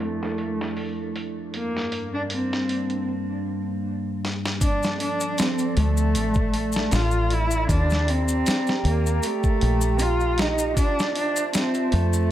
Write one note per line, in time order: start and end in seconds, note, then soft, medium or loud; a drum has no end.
0.00 1.50 F2 medium
0.00 1.50 F3 medium
0.00 1.12 A3 medium
0.00 3.07 D4 medium
0.00 1.50 E4 medium
0.00 1.51 A4 medium
0.00 open hi-hat medium
0.23 snare soft
0.38 open hi-hat medium
0.61 snare medium
0.77 open hi-hat medium
1.16 open hi-hat medium
1.54 4.59 G2 medium
1.54 4.58 G3 medium
1.54 4.59 A#3 medium
1.54 2.10 A#3 medium
1.54 4.58 D4 medium
1.54 open hi-hat medium
1.77 snare soft
1.92 open hi-hat medium
2.14 2.22 D4 medium
2.30 3.04 C4 medium
2.30 open hi-hat medium
2.53 snare soft
2.69 open hi-hat soft
2.90 closed hi-hat soft
4.25 snare medium
4.45 snare medium
4.61 7.66 F3 medium
4.61 4.97 D4 medium
4.61 7.66 A4 medium
4.61 10.72 D5 medium
4.61 7.66 A5 loud
4.61 kick loud
4.61 open hi-hat medium
4.61 maracas medium
4.83 snare soft
4.83 maracas soft
5.00 5.40 D4 medium
5.00 open hi-hat medium
5.20 closed hi-hat soft
5.20 maracas medium
5.38 5.77 C4 medium
5.38 snare loud
5.38 open hi-hat medium
5.38 maracas medium
5.58 closed hi-hat soft
5.58 maracas soft
5.77 6.16 D2 loud
5.77 6.95 A3 loud
5.77 open hi-hat medium
5.97 maracas medium
6.15 6.89 A1 loud
6.15 open hi-hat medium
6.15 maracas medium
6.34 kick loud
6.34 maracas soft
6.54 open hi-hat medium
6.72 snare medium
6.72 maracas medium
6.91 7.66 A1 medium
6.91 7.34 F4 loud
6.91 snare loud
6.91 open hi-hat medium
6.91 maracas medium
7.11 maracas soft
7.30 7.70 E4 loud
7.30 open hi-hat medium
7.51 maracas medium
7.68 8.43 D#2 medium
7.68 8.11 D4 loud
7.68 10.74 G4 medium
7.68 10.73 G5 medium
7.68 10.73 A#5 medium
7.68 kick loud
7.68 open hi-hat medium
7.68 maracas medium
7.90 snare soft
7.90 maracas soft
8.08 8.85 C4 loud
8.08 open hi-hat medium
8.28 maracas medium
8.46 snare loud
8.46 open hi-hat medium
8.46 maracas medium
8.67 snare soft
8.67 maracas soft
8.85 9.19 D#2 loud
8.85 9.27 A#3 medium
8.85 open hi-hat medium
9.06 maracas medium
9.23 10.03 A3 loud
9.23 open hi-hat medium
9.23 maracas medium
9.43 kick medium
9.43 maracas soft
9.61 10.74 A#1 medium
9.61 open hi-hat medium
9.81 maracas medium
9.99 10.41 F4 loud
9.99 open hi-hat medium
9.99 maracas medium
10.20 maracas soft
10.38 10.77 D#4 loud
10.38 snare loud
10.38 open hi-hat medium
10.58 maracas medium
10.76 11.13 D4 loud
10.76 12.31 F4 medium
10.76 12.31 C5 medium
10.76 12.31 E5 medium
10.76 12.31 A5 medium
10.76 kick loud
10.76 open hi-hat medium
10.76 maracas medium
10.99 snare medium
10.99 maracas soft
11.16 11.52 D4 loud
11.16 open hi-hat medium
11.36 closed hi-hat soft
11.36 maracas medium
11.53 11.95 C4 loud
11.53 snare loud
11.53 open hi-hat loud
11.53 maracas medium
11.74 closed hi-hat soft
11.74 maracas soft
11.92 12.31 F2 loud
11.92 12.31 A3 loud
11.92 open hi-hat medium
12.13 maracas medium